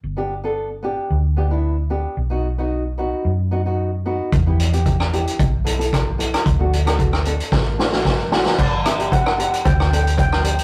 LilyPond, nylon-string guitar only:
\new Staff \with { instrumentName = "Nylon-string guitar" } { \time 4/4 \key g \major \tempo 4 = 112 r16 <b d' g'>16 r16 <b d' a'>8 r16 <b d' g'>8 r8 <b d' g'>16 <b d' e'>8 r16 <b d' g'>8 | r16 <b dis' fis'>16 r16 <b dis' fis'>8 r16 <b dis' fis'>8 r8 <b dis' fis'>16 <b dis' fis'>8 r16 <b dis' fis'>8 | r16 <b e' g'>16 r16 <b e' g'>8 r16 <b e' g'>8 r8 <b e' a'>16 <b e' a'>8 r16 <b e' a'>8 | r16 <a d' fis'>16 r16 <a d' fis'>8 r16 <a d' a'>8 r8 <a d' fis'>16 <a d' fis'>8 r16 <a d' fis'>8 |
r8 <b d' g'>16 <b d' g'>8 r16 <b d' g'>8 r8 <b d' a'>8 r8 <b d' g'>8 | }